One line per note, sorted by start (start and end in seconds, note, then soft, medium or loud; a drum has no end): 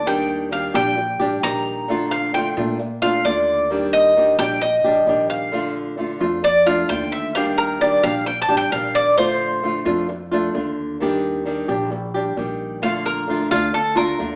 0.00 0.69 D#2 medium
0.06 0.50 D#3 medium
0.06 0.51 G3 medium
0.06 0.52 D4 loud
0.06 0.52 G4 medium
0.06 0.29 G5 medium
0.51 0.73 D#3 medium
0.51 0.74 G3 medium
0.51 0.74 D4 medium
0.51 0.73 G4 medium
0.51 0.74 F5 medium
0.74 1.17 A#1 loud
0.74 0.96 G3 medium
0.74 0.97 D4 medium
0.74 0.96 G4 medium
0.74 1.39 G5 loud
0.97 muted nylon-string guitar stroke medium
1.20 1.42 A1 medium
1.20 1.42 G3 medium
1.20 1.42 D4 medium
1.20 1.42 G4 medium
1.43 2.51 A#1 medium
1.43 1.88 D#3 soft
1.43 1.88 G3 medium
1.43 1.88 D4 medium
1.43 1.89 G4 medium
1.43 2.08 A#5 loud
1.88 2.33 D3 medium
1.88 2.34 A3 medium
1.88 2.34 D4 medium
1.88 2.34 F4 medium
2.11 2.33 F5 medium
2.34 2.56 D3 medium
2.34 2.56 A3 medium
2.34 2.57 D4 medium
2.34 2.56 F4 medium
2.34 2.48 G5 medium
2.57 3.21 A#2 loud
2.57 2.79 A3 soft
2.57 2.79 D4 medium
2.57 2.79 F4 medium
2.79 muted nylon-string guitar stroke medium
3.02 3.24 A3 medium
3.02 3.25 D4 medium
3.02 3.24 F4 medium
3.02 3.24 F5 loud
3.25 4.33 D#2 medium
3.25 3.70 D3 soft
3.25 3.70 A3 medium
3.25 3.70 D4 medium
3.25 3.71 F4 medium
3.25 3.89 D5 medium
3.70 4.15 D#3 medium
3.70 4.16 G3 medium
3.70 4.16 D4 medium
3.70 4.16 G4 medium
3.93 4.36 D#5 medium
4.16 4.38 D#3 medium
4.16 4.38 G3 soft
4.16 4.39 D4 medium
4.16 4.38 G4 medium
4.39 4.81 A#1 loud
4.39 4.61 G3 medium
4.39 4.61 D4 medium
4.39 4.61 G4 medium
4.39 4.61 G5 loud
4.61 5.26 D#5 medium
4.61 muted nylon-string guitar stroke medium
4.84 5.06 A1 medium
4.84 5.07 G3 medium
4.84 5.07 D4 medium
4.84 5.06 G4 medium
5.07 6.15 A#1 medium
5.07 5.52 D#3 medium
5.07 5.52 G3 soft
5.07 5.52 D4 medium
5.07 5.53 G4 medium
5.30 5.72 F5 medium
5.52 5.96 D3 medium
5.52 5.97 A3 medium
5.52 5.98 D4 medium
5.52 5.98 F4 medium
5.97 6.20 D3 medium
5.97 6.20 A3 soft
5.97 6.21 D4 medium
5.97 6.19 F4 medium
6.20 6.85 F2 loud
6.20 6.43 A3 medium
6.20 6.43 D4 medium
6.20 6.43 F4 medium
6.43 6.66 D5 medium
6.43 muted nylon-string guitar stroke medium
6.66 6.89 A3 medium
6.66 6.89 D4 medium
6.66 6.88 F4 medium
6.66 6.89 F5 medium
6.89 7.97 D#2 medium
6.89 7.34 D3 medium
6.89 7.34 A3 medium
6.89 7.35 D4 medium
6.89 7.35 F4 medium
6.89 7.12 G5 loud
7.12 7.34 E5 medium
7.35 7.79 D#3 medium
7.35 7.80 G3 medium
7.35 7.81 D4 medium
7.35 7.81 G4 medium
7.35 7.57 F5 medium
7.58 7.80 A#4 medium
7.81 8.03 D#3 medium
7.81 8.03 G3 medium
7.81 8.03 D4 medium
7.81 8.02 G4 medium
7.81 8.03 D5 medium
8.03 8.46 A#1 loud
8.03 8.25 G3 medium
8.03 8.26 D4 medium
8.03 8.26 G4 medium
8.03 8.26 F5 medium
8.26 8.41 G5 medium
8.26 muted nylon-string guitar stroke medium
8.42 8.56 A5 loud
8.48 8.71 A1 medium
8.48 8.71 G3 medium
8.48 8.71 D4 medium
8.48 8.71 G4 medium
8.57 8.72 G5 medium
8.71 9.80 A#1 medium
8.71 9.16 D#3 medium
8.71 9.17 G3 medium
8.71 9.17 D4 soft
8.71 9.17 G4 medium
8.71 8.94 F5 medium
8.95 9.17 D5 medium
9.17 9.62 D3 medium
9.17 9.62 A3 medium
9.17 9.63 D4 medium
9.17 9.63 F4 loud
9.17 10.05 C5 medium
9.63 9.85 D3 medium
9.63 9.85 A3 medium
9.63 9.85 D4 medium
9.63 9.84 F4 medium
9.85 10.51 F2 loud
9.85 10.08 A3 medium
9.85 10.08 D4 medium
9.85 10.08 F4 medium
10.09 muted nylon-string guitar stroke medium
10.31 10.54 A3 medium
10.31 10.54 D4 medium
10.31 10.54 F4 medium
10.55 11.63 D#2 medium
10.55 10.99 D3 soft
10.55 11.00 A3 soft
10.55 11.00 D4 medium
10.55 11.00 F4 medium
11.00 11.44 D#3 medium
11.00 11.45 G3 medium
11.00 11.46 D4 medium
11.00 11.46 G4 medium
11.46 11.68 D#3 medium
11.46 11.68 G3 medium
11.46 11.68 D4 medium
11.46 11.67 G4 medium
11.68 12.33 A#1 loud
11.68 11.91 G3 medium
11.68 11.91 D4 medium
11.68 11.91 G4 medium
11.91 muted nylon-string guitar stroke medium
12.14 12.36 G3 medium
12.14 12.37 D4 medium
12.14 12.36 G4 medium
12.37 13.45 A#1 medium
12.37 12.82 D#3 soft
12.37 12.82 G3 soft
12.37 12.82 D4 medium
12.37 12.83 G4 medium
12.82 13.26 D3 medium
12.82 13.28 A3 medium
12.82 13.28 D4 medium
12.82 13.28 F4 medium
12.82 13.05 F5 medium
13.06 13.50 A#4 medium
13.28 13.50 D3 medium
13.28 13.51 A3 medium
13.28 13.51 D4 medium
13.28 13.50 F4 medium
13.51 14.16 D2 loud
13.51 13.73 A3 medium
13.51 13.73 D4 medium
13.51 13.73 F4 medium
13.74 13.96 A4 medium
13.74 muted nylon-string guitar stroke medium
13.96 14.18 A3 medium
13.96 14.19 D4 medium
13.96 14.18 F4 medium
13.96 14.36 A#4 medium
14.19 14.36 D#2 medium
14.19 14.36 D3 soft
14.19 14.36 A3 soft
14.19 14.36 D4 medium
14.19 14.36 F4 medium